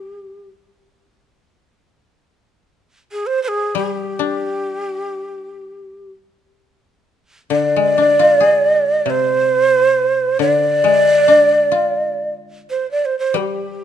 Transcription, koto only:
0.00 0.68 G3 soft
0.00 0.25 D4 soft
3.75 6.38 G3 soft
4.19 5.94 D4 soft
7.50 10.06 D3 medium
7.76 9.44 G#3 soft
7.98 9.65 D4 soft
8.19 9.87 F4 soft
8.40 10.08 G#4 soft
9.06 10.41 C3 soft
10.39 13.05 D3 medium
10.84 12.60 G#3 soft
11.28 13.06 D4 soft
11.72 13.51 F4 soft
13.34 13.84 G3 medium

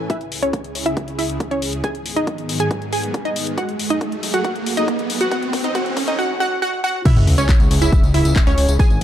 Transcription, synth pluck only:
0.10 0.36 E4 medium
0.10 0.36 E5 loud
0.43 0.77 C#4 medium
0.43 0.77 C#5 medium
0.86 1.12 E4 medium
0.86 1.12 E5 medium
1.19 1.44 E4 medium
1.19 1.44 E5 medium
1.51 1.77 C#4 medium
1.51 1.77 C#5 medium
1.84 2.10 G#4 medium
1.84 2.10 G#5 loud
2.16 2.51 D#4 medium
2.16 2.51 D#5 medium
2.60 2.86 G#4 medium
2.60 2.86 G#5 medium
2.93 3.18 G#4 medium
2.93 3.18 G#5 medium
3.25 3.51 D#4 medium
3.25 3.51 D#5 medium
3.58 3.84 F#4 medium
3.58 3.84 F#5 medium
3.90 4.25 D#4 medium
3.90 4.25 D#5 medium
4.34 4.43 F#4 medium
4.34 4.43 F#5 medium
4.45 4.70 F#4 medium
4.45 4.70 F#5 medium
4.77 5.12 D#4 medium
4.77 5.12 D#5 medium
5.21 5.30 F#4 medium
5.21 5.30 F#5 medium
5.32 5.57 F#4 medium
5.32 5.57 F#5 loud
5.64 5.73 D#4 medium
5.64 5.73 D#5 medium
5.75 6.01 F#4 medium
5.75 6.01 F#5 loud
6.08 6.17 D#4 medium
6.08 6.17 D#5 loud
6.19 6.39 F#4 medium
6.19 6.39 F#5 loud
6.40 6.60 F#4 medium
6.40 6.60 F#5 loud
6.62 6.82 F#4 medium
6.62 6.82 F#5 loud
6.84 7.04 F#4 medium
6.84 7.04 F#5 loud
7.06 7.31 E4 medium
7.06 7.31 E5 loud
7.38 7.72 C#4 medium
7.38 7.72 C#5 medium
7.82 8.07 E4 medium
7.82 8.07 E5 loud
8.14 8.40 E4 medium
8.14 8.40 E5 medium
8.47 8.73 C#4 medium
8.47 8.73 C#5 medium
8.80 9.04 G#4 medium
8.80 9.04 G#5 loud

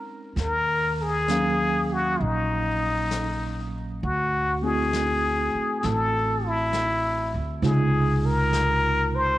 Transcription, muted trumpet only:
0.40 1.03 A#4 medium
1.02 1.94 G#4 medium
1.93 2.23 F#4 medium
2.21 3.73 D#4 medium
4.04 4.65 F#4 medium
4.63 5.79 G#4 medium
5.80 5.87 G#4 medium
5.85 6.48 A4 medium
6.46 7.35 E4 medium
7.65 8.27 G#4 medium
8.26 9.17 A#4 medium
9.15 9.38 C5 medium

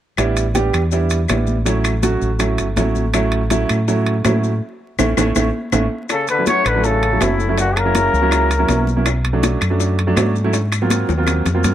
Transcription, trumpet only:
6.11 6.28 A4 medium
6.30 6.46 B4 medium
6.48 6.68 C#5 loud
6.67 6.86 B4 medium
6.85 7.23 A4 medium
7.22 7.58 E4 medium
7.59 7.79 F#4 medium
7.77 8.88 A#4 loud

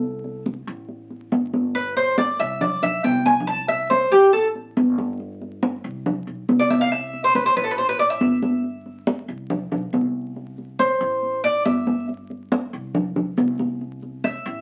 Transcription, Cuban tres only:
0.00 0.42 A4 medium
1.75 1.96 B4 medium
1.97 2.18 C5 medium
2.18 2.39 D5 medium
2.40 2.61 E5 loud
2.61 2.82 D5 medium
2.83 3.04 E5 medium
3.04 3.25 G5 medium
3.26 3.47 G#5 medium
3.47 3.68 A5 medium
3.68 3.89 E5 medium
3.90 4.11 C5 medium
4.12 4.33 G4 medium
4.33 4.46 A4 medium
6.59 6.70 D5 medium
6.70 6.81 E5 medium
6.81 6.91 F5 loud
6.92 7.22 E5 medium
7.24 7.34 C5 medium
7.35 7.45 B4 medium
7.46 7.56 C5 medium
7.57 7.63 B4 medium
7.64 7.71 A4 medium
7.71 7.78 B4 medium
7.78 7.88 C5 medium
7.89 7.99 B4 medium
7.99 8.10 D5 loud
8.10 9.14 E5 medium
10.79 11.40 C5 medium
11.44 11.65 D5 loud
11.65 12.06 E5 medium
14.24 14.61 E5 medium

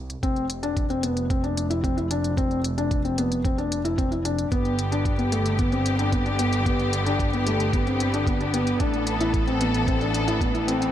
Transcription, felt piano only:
0.23 0.44 C4 medium
0.63 0.84 D4 medium
0.90 1.00 C4 medium
1.03 1.24 B3 medium
1.30 1.41 C4 medium
1.44 1.64 D4 medium
1.70 1.81 E4 medium
1.84 1.94 C4 medium
1.97 2.08 E4 medium
2.11 2.32 D4 medium
2.37 2.58 C4 medium
2.78 2.99 D4 medium
3.05 3.15 C4 medium
3.18 3.39 B3 medium
3.45 3.55 C4 medium
3.58 3.79 D4 medium
3.85 3.95 E4 medium
3.98 4.08 C4 medium
4.11 4.22 E4 medium
4.25 4.46 D4 medium
4.52 4.72 B3 medium
4.92 5.13 D4 medium
5.18 5.29 B3 medium
5.32 5.53 A3 medium
5.58 5.69 B3 medium
5.72 5.93 C4 medium
5.99 6.09 D4 medium
6.12 6.23 B3 medium
6.26 6.36 D4 medium
6.39 6.60 B3 medium
6.66 6.87 B3 medium
7.06 7.27 D4 medium
7.33 7.44 B3 medium
7.47 7.68 A3 medium
7.74 7.84 B3 medium
7.87 8.08 C4 medium
8.14 8.24 D4 medium
8.27 8.38 B3 medium
8.41 8.51 D4 medium
8.54 8.74 B3 medium
8.80 9.01 D4 medium
9.21 9.41 E4 medium
9.47 9.58 C4 medium
9.61 9.82 B3 medium
9.88 9.98 C4 medium
10.01 10.22 D4 medium
10.28 10.38 E4 medium
10.41 10.51 B3 medium
10.54 10.65 E4 medium
10.67 10.88 C4 medium

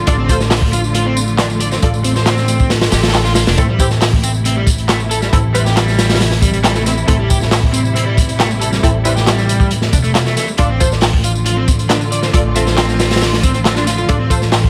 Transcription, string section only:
0.00 3.54 D3 medium
0.00 3.54 F3 medium
0.00 7.04 A3 medium
0.00 3.54 F4 medium
3.58 10.54 C3 medium
3.58 10.54 E3 medium
3.58 10.54 E4 medium
7.08 10.55 G3 medium
10.58 14.70 D3 medium
10.58 14.70 F3 medium
10.58 14.70 A3 medium
10.58 14.70 F4 loud

